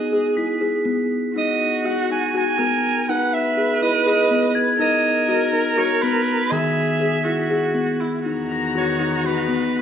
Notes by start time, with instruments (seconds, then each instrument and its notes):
Already playing: viola G#4, soprano saxophone D#5
0.12 kalimba G#4
0.37 kalimba E4, glockenspiel B6
0.61 kalimba G#4
0.85 kalimba B3
1.36 kalimba D#4, viola F#4, soprano saxophone D#5
1.85 kalimba F#4, soprano saxophone F#5
2.10 kalimba D#4, soprano saxophone G#5
2.35 kalimba F#4, soprano saxophone G#5
2.58 kalimba B3, viola A#4
3.08 kalimba D#4, viola B4, soprano saxophone F#5
3.34 soprano saxophone E5
3.57 kalimba G#4
3.82 kalimba E4, soprano saxophone D#5
4.07 kalimba G#4, soprano saxophone D#5
4.31 kalimba B3
4.55 glockenspiel G#6
4.80 kalimba D#4, viola A#4, soprano saxophone D#5
5.29 kalimba F#4, soprano saxophone D#5
5.52 kalimba D#4
5.78 kalimba F#4, soprano saxophone C#5
6.02 kalimba B3, soprano saxophone B4
6.51 kalimba D#3, viola G#4, soprano saxophone E5, glockenspiel G#6
6.70 glockenspiel B6
7.00 kalimba G#4
7.24 kalimba E4, viola F#4
7.50 kalimba G#4
7.75 kalimba B3
8.00 viola E4
8.25 string section E2 D#3 B3 A#5, kalimba D#4, viola F#4
8.52 glockenspiel A#6
8.75 kalimba F#4, soprano saxophone C#5
9.00 kalimba D#4
9.24 kalimba F#4, soprano saxophone B4
9.48 kalimba B3